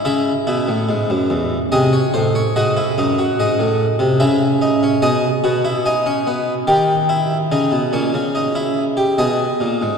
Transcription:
<<
  \new Staff \with { instrumentName = "Harpsichord" } { \time 3/4 \key cis \minor \tempo 4 = 72 << { e''2 dis''16 cis''16 bis'16 cis''16 | dis''4 dis''4 e''4 | dis''4 gis''4 g''4~ | g''2 dis''4 | } \\ { e'8 e'4. gis'4 | fis'16 e'16 dis'16 fis'4~ fis'16 e'8 dis'16 cis'16 | gis'8 fis'16 e'16 dis'16 cis'16 b8 g'8 e'8 | dis'8 cis'8 dis'16 e'8 g'16 gis'4 | } >> }
  \new Staff \with { instrumentName = "Harpsichord" } { \clef bass \time 3/4 \key cis \minor cis8 b,16 a,16 gis,16 fis,16 e,8 bis,8 a,8 | gis,8 fis,8 gis,16 a,8 bis,16 cis4 | b,8 b,4. dis4 | cis16 b,16 ais,16 cis4~ cis16 b,8 ais,16 gis,16 | }
>>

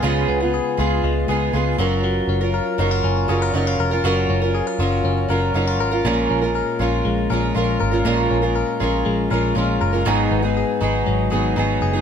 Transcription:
<<
  \new Staff \with { instrumentName = "Clean electric guitar" } { \time 4/4 \key fis \major \tempo 4 = 120 <cis gis b eis' gis'>8 b8 gis'8 eis'8 gis8 gis'8 eis'8 fis8 | fis8 cis'8 ais'8 dis'16 eis'16 cis'8 gis'16 ais'16 dis'16 eis'16 ais'8 | fis8 cis'8 gis'16 ais'16 eis'8 cis'8 ais'8 dis'16 eis'16 ais'8 | ais,8 cis'8 ais'8 eis'8 gis8 ais'8 eis'8 ais'8 |
ais,8 cis'8 ais'8 eis'8 gis8 ais'8 eis'8 ais'8 | gis,8 b8 gis'8 dis'8 fis8 gis'8 dis'8 gis'8 | }
  \new Staff \with { instrumentName = "Twelve-string acoustic guitar" } { \time 4/4 \key fis \major <cis gis b eis' gis'>8. <b eis' gis'>8. <gis b eis' gis'>4 <gis b eis' gis'>8 <gis b eis' gis'>8 <fis cis' eis' ais'>8~ | <fis cis' eis' ais'>8. <cis' eis' ais'>8. <fis cis' eis' ais'>4 <fis cis' eis' ais'>8 <fis cis' eis' ais'>8. <cis' eis' ais'>16 | <fis cis' eis' ais'>8. <cis' eis' ais'>8. <fis cis' eis' ais'>4 <fis cis' eis' ais'>8 <fis cis' eis' ais'>8. <cis' eis' ais'>16 | <ais, eis gis cis' eis' ais'>8. <gis cis' eis' ais'>8. <gis cis' eis' ais'>4 <gis cis' eis' ais'>8 <gis cis' eis' ais'>8. <gis cis' eis' ais'>16 |
<ais, eis gis cis' eis' ais'>8. <gis cis' eis' ais'>8. <gis cis' eis' ais'>4 <gis cis' eis' ais'>8 <gis cis' eis' ais'>8. <gis cis' eis' ais'>16 | <gis, dis fis b dis' gis'>8. <fis b dis' gis'>8. <fis b dis' gis'>4 <fis b dis' gis'>8 <fis b dis' gis'>8. <fis b dis' gis'>16 | }
  \new Staff \with { instrumentName = "Picked electric bass" } { \clef bass \time 4/4 \key fis \major cis,8 cis,8. r16 cis,8 cis,8 cis,8 cis,8 fis,,8~ | fis,,8 fis,,8. r16 fis,,8 fis,,8 fis,,8 fis,,8 eis,,8 | fis,,8 fis,,8. r16 fis,,8 fis,,8 fis,,8 fis,,8 gis,,8 | ais,,8 ais,,8. r16 ais,,8 ais,,8 ais,,8 ais,,8 gis,,8 |
ais,,8 ais,,8. r16 ais,,8 ais,,8 ais,,8 ais,,8 fis,,8 | gis,,8 gis,,8. r16 gis,,8 gis,,8 gis,,8 gis,,8 fis,,8 | }
>>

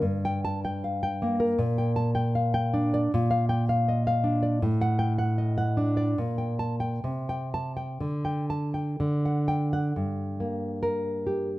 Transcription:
\new Staff \with { instrumentName = "Nylon-string guitar" } { \time 2/4 \key g \minor \tempo 4 = 77 << { r8 a''16 r4 r16 | r8 a''16 r4 r16 | r8 g''16 r4 r16 | r8 g''16 r4 r16 |
r8 a''16 r8. a''16 r16 | r8 a''16 r8. g''16 r16 | r4 bes'4 | } \\ { g,16 g''8 g''16 f''16 g''16 bes16 bes'16 | bes,16 g''8 g''16 f''16 g''16 d'16 d''16 | bes,16 f''8 f''16 ees''16 f''16 d'16 d''16 | a,16 fis''8 fis''16 ees''16 fis''16 d'16 d''16 |
bes,16 g''8 g''16 c16 g''8 g''16 | d16 g''8 g''16 d16 fis''8 fis''16 | g,8 bes4 g'8 | } >> }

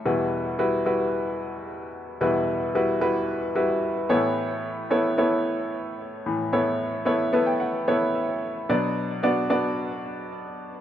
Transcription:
<<
  \new Staff \with { instrumentName = "Upright piano" } { \time 4/4 \key e \dorian \tempo 4 = 111 << { r1 | r1 | r1 | r4. a''16 g''16 fis''4 e''4 |
r1 | } \\ { <g e' fis' b'>4 <g e' fis' b'>8 <g e' fis' b'>2 r8 | <g e' fis' b'>4 <g e' fis' b'>8 <g e' fis' b'>4 <g e' fis' b'>4 <b e' a' cis''>8~ | <b e' a' cis''>4 <b e' a' cis''>8 <b e' a' cis''>2 r8 | <b e' a' cis''>4 <b e' a' cis''>8 <b e' a' b'>4 <b e' a' cis''>4. |
<b d' fis' d''>4 <b d' fis' d''>8 <b d' fis' d''>2 r8 | } >> }
  \new Staff \with { instrumentName = "Upright piano" } { \clef bass \time 4/4 \key e \dorian <e, b,>1 | <e, b,>2.~ <e, b,>8 <a, e>8~ | <a, e>2.~ <a, e>8 <a, e>8~ | <a, e>2.~ <a, e>8 r8 |
<b, fis>1 | }
>>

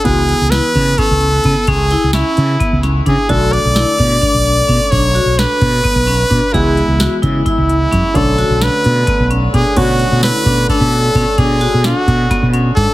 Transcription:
<<
  \new Staff \with { instrumentName = "Trumpet" } { \time 7/8 \key b \dorian \tempo 4 = 130 gis'4 b'4 a'4. | gis'4 e'4. r8 gis'8 | a'8 d''2. | cis''4 b'2~ b'8 |
e'4. r8 e'4. | a'4 b'4. r8 gis'8 | fis'4 b'4 a'4. | gis'4 fis'4. r8 a'8 | }
  \new Staff \with { instrumentName = "Vibraphone" } { \time 7/8 \key b \dorian fis'4 e'8 cis'8 cis'4 b8 | cis'8 e'8 cis'4 b8 cis'8 d'8 | fis'4 e'8 d'8 d'4 cis'8 | d'8 fis'8 d'4 b8 cis'8 d'8 |
gis'4 fis'8 e'8 e'4 cis'8 | d'8 fis'8 d'4 b8 cis'8 d'8 | fis'4 e'8 d'8 d'4 cis'8 | d'8 fis'8 d'4 b8 cis'8 r8 | }
  \new Staff \with { instrumentName = "Grand piano" } { \time 7/8 \key b \dorian <e b>2.~ <e b>8~ | <e b>2.~ <e b>8 | <d a d'>2.~ <d a d'>8~ | <d a d'>2.~ <d a d'>8 |
<e gis b>2.~ <e gis b>8 | <d a cis'>2.~ <d a cis'>8 | <d a cis'>2.~ <d a cis'>8~ | <d a cis'>2.~ <d a cis'>8 | }
  \new Staff \with { instrumentName = "Fretless electric bass" } { \clef bass \time 7/8 \key b \dorian cis,8. cis,8 r16 cis8 r16 cis,8. cis16 r16 | cis,8. cis,8 r16 cis8 r16 cis,8. cis16 r16 | b,,8. b,,8 r16 b,8 r16 b,,8. b,16 r16 | b,,8. b,,8 r16 b,8 r16 b,,8. b,16 r16 |
cis,8. cis,8 r16 cis8 r16 cis,8. fis,16 r16 | b,,8. b,,8 r16 b,8 r16 b,,8. b,16 r16 | b,8. b,8 r16 b,8 r16 b,8. b,16 r16 | b,8. b,8 r16 b,8 r16 b,8. gis,16 r16 | }
  \new DrumStaff \with { instrumentName = "Drums" } \drummode { \time 7/8 <hh bd>8 hh8 <hh sn>8 <hh bd>8 <hh bd>8 hh8 <hh bd>8 | <hh bd>8 hh8 <hh sn>8 hh8 <hh bd>8 <hh sn>8 <hh bd>8 | <hh bd>8 hh8 <hh sn>8 <hh bd>8 <hh bd>8 hh8 <hh bd>8 | <hh bd>8 hh8 <hh sn>8 <hh bd>8 <hh bd>8 hh8 <hh bd>8 |
<hh bd>8 hh8 <hh sn>8 <hh bd>8 <hh bd>8 hh8 <hh bd>8 | <hh bd>8 hh8 <hh sn>8 hh8 <hh bd>8 hh8 <hh bd>8 | <cymc hh bd>8 hh8 <hh sn>8 <hh bd>8 <hh bd>8 hh8 <hh bd>8 | <hh bd>8 hh8 <hh sn>8 <hh bd>8 <hh bd sn>8 hh8 <hh bd>8 | }
>>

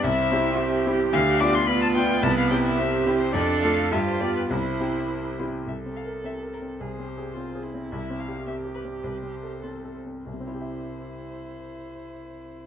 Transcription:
<<
  \new Staff \with { instrumentName = "Violin" } { \time 2/4 \key c \major \tempo 4 = 106 e''4. r8 | f''8 d'''16 c'''16 b''16 a''16 g''8 | a''16 f''16 g''16 e''4 c''16 | d''8 f''8 e''16 c''16 d''16 b'16 |
c''4. r8 | e''8 f''8 e''8 bes'8 | c''4. r8 | e''8 f''8 e''8 b'8 |
c''32 b'32 c''4~ c''16 r8 | c''2~ | c''2 | }
  \new Staff \with { instrumentName = "Cello" } { \time 2/4 \key c \major e'4 g'4~ | g'4 f'4 | e'4 g'4 | a'4 g'4 |
e'4. r8 | r2 | r2 | r2 |
r2 | r2 | r2 | }
  \new Staff \with { instrumentName = "Viola" } { \time 2/4 \key c \major c'2 | d'4 b4~ | b4 c'4 | d'4 f'4 |
e'4. r8 | a'2 | gis'8 g'8 f'8 e'8~ | e'4 g'4~ |
g'4 a'8 r8 | e'2~ | e'2 | }
  \new Staff \with { instrumentName = "Grand piano" } { \time 2/4 \key c \major c,8 <c' e' g'>4 <c' e' g'>8 | d,8 <b d' f'>4 <b d' f'>8 | c,8 <c' e' g'>4 <c' e' g'>8 | f,8 <a f' a'>8 g,8 <b f' g'>8 |
c,8 <c' e' g'>4 <c' e' g'>8 | \tuplet 3/2 { c,8 c'8 bes'8 c'8 bes'8 c'8 } | \tuplet 3/2 { c,8 c'8 gis'8 c'8 gis'8 c'8 } | \tuplet 3/2 { c,8 c'8 g'8 c'8 g'8 c'8 } |
\tuplet 3/2 { c,8 c'8 a'8 c'8 a'8 c'8 } | <c, c c' e' g' e''>2~ | <c, c c' e' g' e''>2 | }
>>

